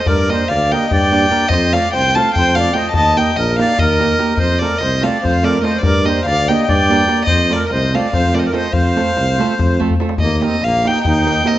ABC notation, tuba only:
X:1
M:7/8
L:1/8
Q:1/4=145
K:Fmix
V:1 name="Tuba" clef=bass
G,,2 D,,2 G,,3 | F,,2 C,,2 F,,3 | E,,2 B,,,2 E,,3 | F,,2 C,,2 F,,3 |
G,,2 D,,2 G,,3 | F,,2 C,,2 F,,3 | F,,2 C,,2 F,,3 | E,,2 B,,,2 E,,3 |]